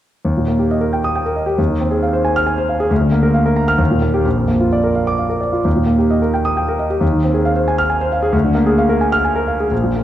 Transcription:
0.25 1.54 D#2 medium
0.37 0.55 A#2 soft
0.48 0.66 A#3 soft
0.59 0.77 G4 soft
0.71 0.89 D#5 soft
0.81 0.99 A#4 soft
0.93 1.10 G5 soft
1.04 1.22 D#6 medium
1.16 1.33 G5 soft
1.26 1.43 A#4 soft
1.36 1.54 D#5 soft
1.46 1.58 G4 medium
1.58 2.86 D#2 medium
1.70 1.88 D#3 soft
1.81 1.99 C4 soft
1.91 2.09 G#4 soft
2.03 2.21 F5 medium
2.13 2.31 C5 medium
2.25 2.42 G#5 medium
2.36 2.53 F6 medium
2.47 2.64 G#5 medium
2.58 2.75 C5 medium
2.69 2.86 F5 medium
2.80 2.91 G#4 medium
2.91 3.77 D2 medium
3.01 3.19 D3 soft
3.12 3.30 A#3 medium
3.23 3.41 A#4 medium
3.34 3.52 F5 medium
3.46 3.64 A#4 medium
3.56 3.75 A#5 medium
3.68 3.79 F6 medium
3.78 4.23 D#2 medium
3.91 4.09 A#2 soft
4.02 4.20 A#3 soft
4.14 4.25 G4 medium
4.25 5.61 A#1 medium
4.37 4.56 F2 soft
4.48 4.67 A#3 soft
4.60 4.79 F4 soft
4.73 4.91 D5 soft
4.84 5.02 A#4 soft
4.95 5.14 F5 soft
5.07 5.26 D6 medium
5.19 5.37 F5 soft
5.29 5.49 A#4 soft
5.41 5.60 D5 soft
5.53 5.65 F4 soft
5.65 6.97 D#2 medium
5.75 5.95 A#2 soft
5.86 6.06 A#3 soft
5.98 6.18 G4 soft
6.11 6.30 D#5 soft
6.22 6.41 A#4 soft
6.34 6.52 G5 soft
6.45 6.63 D#6 medium
6.57 6.75 G5 soft
6.68 6.86 A#4 soft
6.79 6.97 D#5 soft
6.90 7.01 G4 medium
7.01 8.29 D#2 medium
7.12 7.30 D#3 soft
7.24 7.41 C4 soft
7.34 7.52 G#4 soft
7.45 7.63 F5 medium
7.56 7.74 C5 medium
7.68 7.85 G#5 medium
7.78 7.96 F6 medium
7.90 8.08 G#5 medium
8.01 8.19 C5 medium
8.12 8.30 F5 medium
8.23 8.34 G#4 medium
8.32 9.66 D2 medium
8.45 8.62 D3 soft
8.55 8.73 A#3 medium
8.66 8.84 G#4 medium
8.78 8.96 F5 medium
8.89 9.07 A#4 medium
9.01 9.19 G#5 medium
9.12 9.31 F6 medium
9.25 9.43 G#5 medium
9.36 9.54 A#4 medium
9.48 9.67 F5 soft
9.60 9.72 G#4 medium
9.71 10.04 A#1 medium
9.83 10.02 A#2 soft
9.96 10.04 A#3 soft

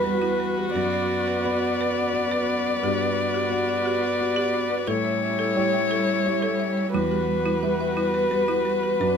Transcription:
0.00 0.77 E2 medium
0.00 0.04 G3 soft
0.00 0.71 G3 medium
0.00 0.71 G3 soft
0.00 4.84 B3 medium
0.00 0.04 F#4 medium
0.00 2.79 F#4 medium
0.00 0.71 F#4 soft
0.00 0.70 B4 medium
0.00 0.77 B4 medium
0.00 0.71 F#5 medium
0.04 0.15 B4 soft
0.22 0.32 E4 medium
0.40 0.50 B4 medium
0.58 0.68 G4 soft
0.75 1.43 F#2 medium
0.75 4.89 B3 medium
0.75 4.88 F#4 medium
0.75 0.86 B4 medium
0.75 4.89 D5 medium
0.75 4.87 D5 medium
0.93 1.04 D5 medium
1.28 1.38 B4 medium
1.45 2.10 B3 soft
1.45 2.10 F#4 soft
1.45 2.10 D5 medium
1.45 1.56 B5 soft
1.63 1.73 B5 medium
1.81 1.91 B4 medium
1.98 2.08 F#5 soft
2.14 2.79 B3 soft
2.14 2.79 F#4 soft
2.14 2.79 D5 soft
2.14 2.25 F#5 soft
2.31 2.42 B4 medium
2.49 2.59 F#5 medium
2.66 2.76 D5 soft
2.83 3.49 G2 medium
2.83 4.89 F#4 medium
2.83 2.93 G4 medium
3.01 3.11 B4 soft
3.34 3.44 G4 medium
3.50 4.15 B3 soft
3.50 4.15 F#4 soft
3.50 4.15 D5 medium
3.50 3.62 F#5 medium
3.69 3.79 F#5 medium
3.86 3.96 G4 medium
4.02 4.12 D5 soft
4.20 4.84 B3 soft
4.20 4.84 F#4 soft
4.20 4.30 D5 medium
4.20 4.84 D5 soft
4.36 4.46 G4 medium
4.54 4.64 D5 medium
4.70 4.80 B4 medium
4.87 5.53 A2 medium
4.87 9.00 G3 medium
4.87 6.93 C#4 medium
4.87 6.93 E4 medium
4.87 4.98 A4 medium
4.87 6.93 C#5 medium
4.87 6.93 E5 medium
5.05 5.15 C#5 medium
5.39 5.49 A4 medium
5.55 6.20 G3 soft
5.55 6.21 E4 soft
5.55 6.21 C#5 medium
5.55 5.66 G5 soft
5.73 5.83 G5 medium
5.91 6.01 A4 medium
6.08 6.18 E5 soft
6.25 6.90 G3 soft
6.25 6.90 E4 soft
6.25 6.90 C#5 soft
6.25 6.36 E5 soft
6.42 6.52 A4 medium
6.60 6.70 E5 medium
6.77 6.87 C#5 medium
6.92 7.60 E2 medium
6.92 9.17 B3 medium
6.92 7.04 E4 medium
6.92 9.02 F#4 medium
6.92 9.17 B4 medium
6.92 8.99 F#5 medium
7.11 7.21 G4 medium
7.46 7.56 E4 medium
7.62 8.27 G3 medium
7.62 8.27 F#4 soft
7.62 8.27 B4 medium
7.62 7.73 E5 soft
7.81 7.90 E5 medium
7.97 8.07 E4 medium
8.14 8.24 B4 medium
8.30 8.96 G3 soft
8.30 8.96 F#4 soft
8.30 8.96 B4 medium
8.30 8.41 B4 medium
8.48 8.58 E4 medium
8.65 8.76 B4 medium
8.83 8.93 G4 medium
9.00 9.17 F#2 medium
9.00 9.17 F#3 medium
9.00 9.17 D4 medium
9.00 9.17 F#4 medium
9.00 9.11 B4 medium
9.00 9.17 D5 medium

